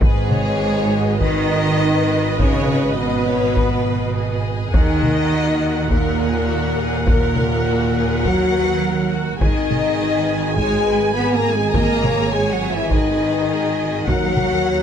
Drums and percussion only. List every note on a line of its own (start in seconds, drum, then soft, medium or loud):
0.01 taiko loud
0.31 taiko mid medium
1.21 taiko medium
2.39 taiko loud
2.69 taiko mid medium
3.57 taiko medium
4.74 taiko loud
5.03 taiko mid medium
5.90 taiko medium
7.07 taiko loud
7.36 taiko mid medium
8.25 taiko medium
9.41 taiko loud
9.71 taiko mid medium
10.58 taiko medium
11.74 taiko loud
12.04 taiko mid medium
12.91 taiko medium
14.07 taiko loud
14.37 taiko mid medium